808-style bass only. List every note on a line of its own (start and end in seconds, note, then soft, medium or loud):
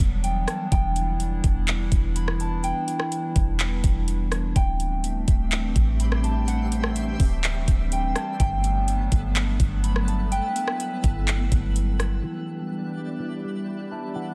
0.00 0.46 E1 loud
0.72 1.41 E1 loud
1.44 1.90 E1 loud
1.92 2.72 E1 loud
3.36 3.82 E1 loud
3.84 4.53 E1 loud
4.56 5.25 D1 loud
5.28 5.74 D1 loud
5.76 7.16 A1 loud
7.20 7.66 D1 loud
7.68 8.14 D1 loud
8.40 9.09 G1 loud
9.12 9.58 G1 loud
9.60 10.40 G1 loud
11.04 11.50 G1 loud
11.52 12.21 G1 loud